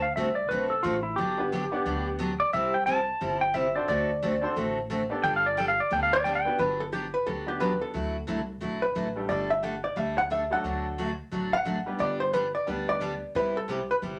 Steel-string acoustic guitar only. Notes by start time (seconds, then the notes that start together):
0.17 D3 A3 C4 F#4 A4
0.51 D3 A3 C4 F#4 A4
0.83 D3 A3 C4 F#4 A4
1.18 D3 F#3 B3 D4 G4
1.52 D3 F#3 B3 D4 G4
1.86 D3 F#3 B3 D4 G4
2.19 D3 F#3 B3 D4 G4
2.53 C3 G3 C4 E4 G4
2.87 C3 G3 C4 E4 G4
3.21 C3 G3 C4 E4 G4
3.54 C3 G3 C4 E4 G4
3.88 D3 A3 C4 F#4 A4
4.22 D3 A3 C4 F#4 A4
4.56 D3 A3 C4 F#4 A4
4.90 D3 A3 C4 F#4 A4
5.24 G3 B3 D4 A4
5.57 G3 B3 D4 A4
5.91 G3 B3 D4 A4
6.25 G3 B3 D4 A4
6.58 D3 F#3 B3 D4 G4
6.92 D3 F#3 B3 D4 G4
7.26 D3 F#3 B3 D4 G4
7.60 D3 F#3 B3 D4 G4
7.94 D3 F#3 A3 E4 F#4
8.27 D3 F#3 A3 E4 F#4
8.61 D3 F#3 A3 E4 F#4
8.95 D3 F#3 A3 E4 F#4
9.29 G3 A3 D4 A4
9.63 G3 A3 D4 A4
9.96 G3 A3 D4 A4
10.30 G3 A3 D4 A4
10.64 D3 F#3 A3 D4 F#4
10.98 D3 F#3 A3 D4 F#4
11.32 D3 F#3 A3 D4 F#4
11.65 D3 F#3 A3 D4 F#4
11.99 D3 G3 B3 D4 G4
12.33 D3 G3 B3 D4 G4
12.67 D3 G3 B3 D4 G4
13.00 D3 G3 B3 D4 G4
13.35 C3 G3 B3 E4 G4
13.68 C3 G3 B3 E4 G4
14.02 C3 G3 B3 E4 G4